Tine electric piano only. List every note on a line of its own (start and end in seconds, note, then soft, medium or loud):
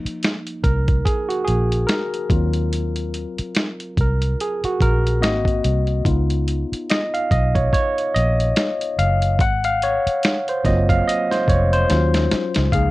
0.00 2.32 F3 soft
0.00 2.33 A#3 soft
0.00 2.33 D#4 medium
0.64 1.07 A#4 medium
1.05 1.31 G#4 medium
1.29 1.47 F#4 medium
1.45 1.89 G#4 medium
1.87 2.67 A#4 medium
2.29 2.88 F#3 medium
2.29 2.88 C4 soft
2.29 2.89 F4 medium
4.01 4.42 A#4 medium
4.41 4.65 G#4 medium
4.65 4.72 F#4 medium
4.82 5.24 A#4 medium
5.21 6.01 A#3 medium
5.21 6.01 C4 soft
5.21 6.01 F#4 medium
5.21 6.02 D#5 loud
6.05 7.27 B3 medium
6.05 7.27 D#4 medium
6.05 7.27 F4 medium
6.91 7.15 D#5 medium
7.14 7.30 F5 medium
7.31 7.54 D#5 medium
7.55 7.72 C#5 medium
7.73 8.16 C#5 medium
8.14 9.00 D#5 loud
8.99 9.41 F5 medium
9.41 9.65 F#5 loud
9.65 9.82 F5 loud
9.83 10.44 C#5 loud
10.49 10.66 C5 medium
10.64 11.85 F#3 medium
10.64 11.85 A#3 medium
10.64 11.85 C4 medium
10.64 11.85 F4 medium
10.64 10.90 D#5 medium
10.89 11.07 F5 medium
11.07 11.32 D#5 medium
11.31 11.49 C5 medium
11.49 11.71 C#5 medium
11.73 12.52 C5 medium
11.89 12.69 F#3 medium
11.89 12.69 C#4 medium
11.89 12.69 F4 medium
12.72 12.91 F3 soft
12.72 12.91 A#3 soft
12.72 12.91 D#4 soft
12.72 12.91 G#4 medium
12.72 12.91 F5 medium